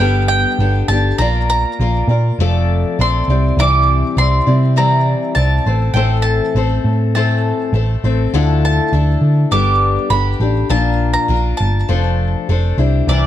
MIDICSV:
0, 0, Header, 1, 4, 480
1, 0, Start_track
1, 0, Tempo, 595238
1, 956, Time_signature, 4, 2, 24, 8
1, 10698, End_track
2, 0, Start_track
2, 0, Title_t, "Mandolin"
2, 0, Program_c, 0, 25
2, 0, Note_on_c, 0, 79, 92
2, 215, Note_off_c, 0, 79, 0
2, 228, Note_on_c, 0, 79, 98
2, 709, Note_off_c, 0, 79, 0
2, 712, Note_on_c, 0, 81, 103
2, 951, Note_off_c, 0, 81, 0
2, 955, Note_on_c, 0, 82, 105
2, 1197, Note_off_c, 0, 82, 0
2, 1207, Note_on_c, 0, 82, 101
2, 1891, Note_off_c, 0, 82, 0
2, 2430, Note_on_c, 0, 84, 106
2, 2898, Note_off_c, 0, 84, 0
2, 2902, Note_on_c, 0, 86, 117
2, 3339, Note_off_c, 0, 86, 0
2, 3373, Note_on_c, 0, 84, 100
2, 3815, Note_off_c, 0, 84, 0
2, 3851, Note_on_c, 0, 82, 90
2, 4311, Note_off_c, 0, 82, 0
2, 4314, Note_on_c, 0, 81, 102
2, 4788, Note_on_c, 0, 79, 83
2, 4812, Note_off_c, 0, 81, 0
2, 5017, Note_off_c, 0, 79, 0
2, 5018, Note_on_c, 0, 81, 94
2, 5756, Note_off_c, 0, 81, 0
2, 5766, Note_on_c, 0, 81, 85
2, 6450, Note_off_c, 0, 81, 0
2, 6974, Note_on_c, 0, 81, 92
2, 7672, Note_off_c, 0, 81, 0
2, 7675, Note_on_c, 0, 86, 101
2, 8123, Note_off_c, 0, 86, 0
2, 8146, Note_on_c, 0, 83, 99
2, 8628, Note_off_c, 0, 83, 0
2, 8631, Note_on_c, 0, 81, 99
2, 8976, Note_off_c, 0, 81, 0
2, 8979, Note_on_c, 0, 82, 92
2, 9329, Note_off_c, 0, 82, 0
2, 9332, Note_on_c, 0, 81, 85
2, 9790, Note_off_c, 0, 81, 0
2, 10555, Note_on_c, 0, 74, 93
2, 10698, Note_off_c, 0, 74, 0
2, 10698, End_track
3, 0, Start_track
3, 0, Title_t, "Steel-string acoustic guitar"
3, 0, Program_c, 1, 25
3, 0, Note_on_c, 1, 55, 81
3, 0, Note_on_c, 1, 59, 80
3, 1, Note_on_c, 1, 62, 77
3, 6, Note_on_c, 1, 67, 81
3, 7, Note_on_c, 1, 69, 84
3, 476, Note_off_c, 1, 55, 0
3, 476, Note_off_c, 1, 59, 0
3, 481, Note_off_c, 1, 67, 0
3, 482, Note_off_c, 1, 69, 0
3, 483, Note_off_c, 1, 62, 0
3, 485, Note_on_c, 1, 59, 58
3, 486, Note_on_c, 1, 62, 59
3, 493, Note_on_c, 1, 67, 62
3, 496, Note_on_c, 1, 69, 60
3, 719, Note_off_c, 1, 69, 0
3, 721, Note_off_c, 1, 59, 0
3, 721, Note_off_c, 1, 62, 0
3, 725, Note_off_c, 1, 67, 0
3, 728, Note_on_c, 1, 69, 53
3, 736, Note_on_c, 1, 67, 44
3, 744, Note_on_c, 1, 62, 40
3, 963, Note_off_c, 1, 69, 0
3, 967, Note_off_c, 1, 67, 0
3, 970, Note_on_c, 1, 58, 92
3, 971, Note_off_c, 1, 62, 0
3, 978, Note_on_c, 1, 70, 95
3, 979, Note_on_c, 1, 65, 89
3, 979, Note_on_c, 1, 74, 93
3, 1445, Note_off_c, 1, 58, 0
3, 1448, Note_off_c, 1, 70, 0
3, 1449, Note_off_c, 1, 65, 0
3, 1456, Note_on_c, 1, 58, 63
3, 1461, Note_on_c, 1, 65, 69
3, 1464, Note_off_c, 1, 74, 0
3, 1464, Note_on_c, 1, 70, 66
3, 1467, Note_on_c, 1, 74, 67
3, 1675, Note_off_c, 1, 74, 0
3, 1685, Note_on_c, 1, 74, 52
3, 1686, Note_off_c, 1, 70, 0
3, 1687, Note_off_c, 1, 58, 0
3, 1690, Note_off_c, 1, 65, 0
3, 1695, Note_on_c, 1, 70, 49
3, 1700, Note_on_c, 1, 65, 41
3, 1922, Note_off_c, 1, 74, 0
3, 1927, Note_off_c, 1, 70, 0
3, 1930, Note_off_c, 1, 65, 0
3, 1937, Note_on_c, 1, 57, 91
3, 1938, Note_on_c, 1, 53, 86
3, 1941, Note_on_c, 1, 60, 91
3, 1944, Note_on_c, 1, 69, 95
3, 1947, Note_on_c, 1, 74, 110
3, 2400, Note_off_c, 1, 57, 0
3, 2409, Note_off_c, 1, 53, 0
3, 2410, Note_on_c, 1, 57, 55
3, 2412, Note_off_c, 1, 69, 0
3, 2414, Note_off_c, 1, 60, 0
3, 2414, Note_off_c, 1, 74, 0
3, 2417, Note_on_c, 1, 60, 64
3, 2421, Note_on_c, 1, 69, 62
3, 2431, Note_on_c, 1, 74, 74
3, 2645, Note_off_c, 1, 57, 0
3, 2648, Note_off_c, 1, 60, 0
3, 2648, Note_off_c, 1, 74, 0
3, 2651, Note_off_c, 1, 69, 0
3, 2658, Note_on_c, 1, 74, 52
3, 2659, Note_on_c, 1, 64, 51
3, 2663, Note_on_c, 1, 60, 53
3, 2671, Note_on_c, 1, 55, 51
3, 2885, Note_off_c, 1, 55, 0
3, 2885, Note_off_c, 1, 60, 0
3, 2889, Note_off_c, 1, 74, 0
3, 2890, Note_off_c, 1, 64, 0
3, 2893, Note_on_c, 1, 48, 84
3, 2894, Note_on_c, 1, 55, 89
3, 2895, Note_on_c, 1, 52, 92
3, 2895, Note_on_c, 1, 60, 91
3, 2900, Note_on_c, 1, 64, 98
3, 2902, Note_on_c, 1, 74, 90
3, 3352, Note_off_c, 1, 55, 0
3, 3361, Note_on_c, 1, 55, 64
3, 3367, Note_off_c, 1, 48, 0
3, 3369, Note_off_c, 1, 60, 0
3, 3371, Note_off_c, 1, 74, 0
3, 3372, Note_on_c, 1, 60, 68
3, 3374, Note_off_c, 1, 64, 0
3, 3378, Note_on_c, 1, 64, 72
3, 3381, Note_on_c, 1, 74, 68
3, 3405, Note_off_c, 1, 52, 0
3, 3591, Note_off_c, 1, 74, 0
3, 3596, Note_off_c, 1, 64, 0
3, 3599, Note_off_c, 1, 60, 0
3, 3601, Note_off_c, 1, 55, 0
3, 3601, Note_on_c, 1, 74, 49
3, 3606, Note_on_c, 1, 64, 52
3, 3608, Note_on_c, 1, 60, 45
3, 3613, Note_on_c, 1, 55, 44
3, 3835, Note_off_c, 1, 55, 0
3, 3839, Note_off_c, 1, 60, 0
3, 3839, Note_on_c, 1, 48, 81
3, 3841, Note_off_c, 1, 74, 0
3, 3843, Note_off_c, 1, 64, 0
3, 3844, Note_on_c, 1, 55, 83
3, 3845, Note_on_c, 1, 52, 79
3, 3848, Note_on_c, 1, 60, 96
3, 3852, Note_on_c, 1, 74, 90
3, 3855, Note_on_c, 1, 64, 85
3, 4301, Note_off_c, 1, 55, 0
3, 4311, Note_off_c, 1, 60, 0
3, 4311, Note_on_c, 1, 55, 52
3, 4320, Note_off_c, 1, 48, 0
3, 4320, Note_off_c, 1, 74, 0
3, 4321, Note_on_c, 1, 60, 62
3, 4325, Note_off_c, 1, 64, 0
3, 4329, Note_on_c, 1, 64, 59
3, 4330, Note_on_c, 1, 74, 68
3, 4354, Note_off_c, 1, 52, 0
3, 4556, Note_off_c, 1, 55, 0
3, 4561, Note_off_c, 1, 60, 0
3, 4565, Note_off_c, 1, 64, 0
3, 4565, Note_off_c, 1, 74, 0
3, 4568, Note_on_c, 1, 72, 54
3, 4573, Note_on_c, 1, 69, 54
3, 4577, Note_on_c, 1, 60, 42
3, 4584, Note_on_c, 1, 57, 47
3, 4796, Note_off_c, 1, 57, 0
3, 4802, Note_off_c, 1, 60, 0
3, 4802, Note_off_c, 1, 72, 0
3, 4803, Note_on_c, 1, 45, 80
3, 4804, Note_on_c, 1, 52, 81
3, 4805, Note_off_c, 1, 69, 0
3, 4806, Note_on_c, 1, 57, 91
3, 4811, Note_on_c, 1, 60, 91
3, 4812, Note_on_c, 1, 72, 94
3, 4815, Note_on_c, 1, 69, 100
3, 5282, Note_off_c, 1, 45, 0
3, 5282, Note_off_c, 1, 52, 0
3, 5283, Note_off_c, 1, 60, 0
3, 5285, Note_off_c, 1, 57, 0
3, 5286, Note_off_c, 1, 72, 0
3, 5288, Note_on_c, 1, 57, 69
3, 5292, Note_on_c, 1, 60, 64
3, 5294, Note_off_c, 1, 69, 0
3, 5297, Note_on_c, 1, 69, 67
3, 5303, Note_on_c, 1, 72, 67
3, 5766, Note_off_c, 1, 60, 0
3, 5769, Note_on_c, 1, 45, 71
3, 5770, Note_on_c, 1, 52, 74
3, 5771, Note_off_c, 1, 72, 0
3, 5773, Note_off_c, 1, 57, 0
3, 5777, Note_on_c, 1, 57, 80
3, 5777, Note_on_c, 1, 60, 77
3, 5779, Note_off_c, 1, 69, 0
3, 5780, Note_on_c, 1, 72, 83
3, 5782, Note_on_c, 1, 69, 83
3, 6229, Note_off_c, 1, 57, 0
3, 6239, Note_on_c, 1, 57, 55
3, 6240, Note_off_c, 1, 60, 0
3, 6241, Note_off_c, 1, 69, 0
3, 6244, Note_off_c, 1, 45, 0
3, 6245, Note_off_c, 1, 52, 0
3, 6245, Note_off_c, 1, 72, 0
3, 6249, Note_on_c, 1, 60, 56
3, 6251, Note_on_c, 1, 69, 58
3, 6254, Note_on_c, 1, 72, 61
3, 6475, Note_off_c, 1, 72, 0
3, 6479, Note_off_c, 1, 57, 0
3, 6482, Note_off_c, 1, 69, 0
3, 6484, Note_off_c, 1, 60, 0
3, 6484, Note_on_c, 1, 72, 59
3, 6492, Note_on_c, 1, 60, 50
3, 6492, Note_on_c, 1, 69, 58
3, 6499, Note_on_c, 1, 57, 49
3, 6719, Note_off_c, 1, 57, 0
3, 6721, Note_off_c, 1, 69, 0
3, 6721, Note_on_c, 1, 50, 86
3, 6722, Note_off_c, 1, 72, 0
3, 6725, Note_off_c, 1, 60, 0
3, 6725, Note_on_c, 1, 53, 98
3, 6728, Note_on_c, 1, 57, 91
3, 6730, Note_on_c, 1, 64, 111
3, 6731, Note_on_c, 1, 69, 98
3, 6733, Note_on_c, 1, 62, 96
3, 7189, Note_off_c, 1, 57, 0
3, 7197, Note_off_c, 1, 62, 0
3, 7198, Note_on_c, 1, 57, 61
3, 7199, Note_off_c, 1, 50, 0
3, 7200, Note_off_c, 1, 64, 0
3, 7200, Note_on_c, 1, 62, 68
3, 7201, Note_off_c, 1, 53, 0
3, 7204, Note_off_c, 1, 69, 0
3, 7210, Note_on_c, 1, 64, 70
3, 7215, Note_on_c, 1, 69, 71
3, 7669, Note_on_c, 1, 55, 80
3, 7672, Note_off_c, 1, 57, 0
3, 7673, Note_off_c, 1, 62, 0
3, 7673, Note_off_c, 1, 69, 0
3, 7675, Note_on_c, 1, 59, 83
3, 7676, Note_on_c, 1, 62, 89
3, 7677, Note_off_c, 1, 64, 0
3, 7680, Note_on_c, 1, 67, 95
3, 7683, Note_on_c, 1, 69, 92
3, 8134, Note_off_c, 1, 59, 0
3, 8144, Note_off_c, 1, 62, 0
3, 8144, Note_on_c, 1, 59, 58
3, 8146, Note_off_c, 1, 69, 0
3, 8147, Note_on_c, 1, 62, 64
3, 8148, Note_off_c, 1, 67, 0
3, 8152, Note_off_c, 1, 55, 0
3, 8156, Note_on_c, 1, 69, 71
3, 8157, Note_on_c, 1, 67, 63
3, 8379, Note_off_c, 1, 69, 0
3, 8386, Note_off_c, 1, 67, 0
3, 8389, Note_on_c, 1, 69, 53
3, 8390, Note_off_c, 1, 59, 0
3, 8391, Note_off_c, 1, 62, 0
3, 8395, Note_on_c, 1, 67, 46
3, 8407, Note_on_c, 1, 62, 43
3, 8620, Note_off_c, 1, 62, 0
3, 8624, Note_on_c, 1, 46, 85
3, 8624, Note_on_c, 1, 53, 87
3, 8629, Note_off_c, 1, 69, 0
3, 8630, Note_on_c, 1, 58, 87
3, 8630, Note_on_c, 1, 62, 92
3, 8631, Note_off_c, 1, 67, 0
3, 8632, Note_on_c, 1, 70, 87
3, 8634, Note_on_c, 1, 65, 94
3, 9088, Note_off_c, 1, 58, 0
3, 9097, Note_on_c, 1, 58, 64
3, 9102, Note_off_c, 1, 62, 0
3, 9102, Note_off_c, 1, 65, 0
3, 9104, Note_off_c, 1, 70, 0
3, 9105, Note_on_c, 1, 62, 68
3, 9108, Note_off_c, 1, 46, 0
3, 9109, Note_off_c, 1, 53, 0
3, 9112, Note_on_c, 1, 65, 71
3, 9114, Note_on_c, 1, 70, 71
3, 9579, Note_off_c, 1, 62, 0
3, 9583, Note_off_c, 1, 58, 0
3, 9584, Note_on_c, 1, 53, 72
3, 9586, Note_on_c, 1, 57, 90
3, 9589, Note_off_c, 1, 65, 0
3, 9589, Note_on_c, 1, 62, 84
3, 9590, Note_off_c, 1, 70, 0
3, 9592, Note_on_c, 1, 69, 88
3, 9593, Note_on_c, 1, 72, 87
3, 10062, Note_off_c, 1, 57, 0
3, 10066, Note_off_c, 1, 62, 0
3, 10068, Note_off_c, 1, 53, 0
3, 10070, Note_off_c, 1, 69, 0
3, 10072, Note_on_c, 1, 57, 63
3, 10076, Note_on_c, 1, 62, 74
3, 10080, Note_on_c, 1, 69, 66
3, 10087, Note_off_c, 1, 72, 0
3, 10090, Note_on_c, 1, 72, 76
3, 10295, Note_off_c, 1, 72, 0
3, 10305, Note_on_c, 1, 72, 64
3, 10307, Note_off_c, 1, 62, 0
3, 10308, Note_off_c, 1, 69, 0
3, 10312, Note_off_c, 1, 57, 0
3, 10312, Note_on_c, 1, 64, 59
3, 10317, Note_on_c, 1, 62, 53
3, 10324, Note_on_c, 1, 55, 55
3, 10548, Note_off_c, 1, 55, 0
3, 10548, Note_off_c, 1, 72, 0
3, 10549, Note_off_c, 1, 64, 0
3, 10550, Note_off_c, 1, 62, 0
3, 10551, Note_on_c, 1, 48, 87
3, 10556, Note_on_c, 1, 52, 90
3, 10558, Note_on_c, 1, 55, 87
3, 10558, Note_on_c, 1, 64, 101
3, 10560, Note_on_c, 1, 62, 85
3, 10564, Note_on_c, 1, 72, 88
3, 10698, Note_off_c, 1, 48, 0
3, 10698, Note_off_c, 1, 52, 0
3, 10698, Note_off_c, 1, 55, 0
3, 10698, Note_off_c, 1, 62, 0
3, 10698, Note_off_c, 1, 64, 0
3, 10698, Note_off_c, 1, 72, 0
3, 10698, End_track
4, 0, Start_track
4, 0, Title_t, "Picked electric bass"
4, 0, Program_c, 2, 34
4, 0, Note_on_c, 2, 31, 100
4, 353, Note_off_c, 2, 31, 0
4, 473, Note_on_c, 2, 31, 98
4, 655, Note_off_c, 2, 31, 0
4, 711, Note_on_c, 2, 31, 91
4, 894, Note_off_c, 2, 31, 0
4, 956, Note_on_c, 2, 34, 104
4, 1318, Note_off_c, 2, 34, 0
4, 1447, Note_on_c, 2, 34, 106
4, 1624, Note_off_c, 2, 34, 0
4, 1673, Note_on_c, 2, 46, 88
4, 1856, Note_off_c, 2, 46, 0
4, 1925, Note_on_c, 2, 29, 109
4, 2284, Note_off_c, 2, 29, 0
4, 2412, Note_on_c, 2, 34, 103
4, 2588, Note_off_c, 2, 34, 0
4, 2643, Note_on_c, 2, 36, 96
4, 2823, Note_off_c, 2, 36, 0
4, 2877, Note_on_c, 2, 36, 113
4, 3240, Note_off_c, 2, 36, 0
4, 3361, Note_on_c, 2, 36, 100
4, 3541, Note_off_c, 2, 36, 0
4, 3605, Note_on_c, 2, 48, 79
4, 4145, Note_off_c, 2, 48, 0
4, 4322, Note_on_c, 2, 36, 101
4, 4502, Note_off_c, 2, 36, 0
4, 4566, Note_on_c, 2, 33, 100
4, 4745, Note_off_c, 2, 33, 0
4, 4790, Note_on_c, 2, 33, 112
4, 5155, Note_off_c, 2, 33, 0
4, 5283, Note_on_c, 2, 33, 101
4, 5463, Note_off_c, 2, 33, 0
4, 5519, Note_on_c, 2, 45, 85
4, 6061, Note_off_c, 2, 45, 0
4, 6231, Note_on_c, 2, 33, 99
4, 6414, Note_off_c, 2, 33, 0
4, 6481, Note_on_c, 2, 33, 90
4, 6661, Note_off_c, 2, 33, 0
4, 6721, Note_on_c, 2, 38, 99
4, 7081, Note_off_c, 2, 38, 0
4, 7197, Note_on_c, 2, 38, 93
4, 7378, Note_off_c, 2, 38, 0
4, 7428, Note_on_c, 2, 50, 84
4, 7612, Note_off_c, 2, 50, 0
4, 7673, Note_on_c, 2, 31, 95
4, 8035, Note_off_c, 2, 31, 0
4, 8146, Note_on_c, 2, 31, 104
4, 8330, Note_off_c, 2, 31, 0
4, 8384, Note_on_c, 2, 33, 87
4, 8569, Note_off_c, 2, 33, 0
4, 8627, Note_on_c, 2, 34, 112
4, 8991, Note_off_c, 2, 34, 0
4, 9104, Note_on_c, 2, 34, 100
4, 9288, Note_off_c, 2, 34, 0
4, 9357, Note_on_c, 2, 31, 91
4, 9536, Note_off_c, 2, 31, 0
4, 9590, Note_on_c, 2, 29, 104
4, 9951, Note_off_c, 2, 29, 0
4, 10072, Note_on_c, 2, 29, 102
4, 10253, Note_off_c, 2, 29, 0
4, 10302, Note_on_c, 2, 36, 94
4, 10486, Note_off_c, 2, 36, 0
4, 10541, Note_on_c, 2, 36, 116
4, 10698, Note_off_c, 2, 36, 0
4, 10698, End_track
0, 0, End_of_file